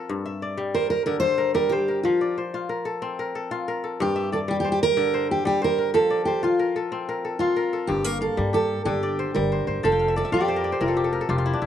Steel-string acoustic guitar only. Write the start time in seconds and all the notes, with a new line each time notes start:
0.74 A#4
0.90 A#4
1.06 A#4
1.20 C5
1.55 A#4
1.69 G4
2.03 F4
4.02 G4
4.33 A4
4.51 G4
4.60 G4
4.72 G4
4.83 A#4
5.31 G4
5.47 G4
5.64 A#4
5.94 A4
6.25 G4
6.44 F4
7.39 F4
7.87 G4
8.04 A#4
8.22 A4
8.54 A4
8.85 G4
9.35 A#4
9.85 A4
10.17 A4
10.34 G4
10.81 F4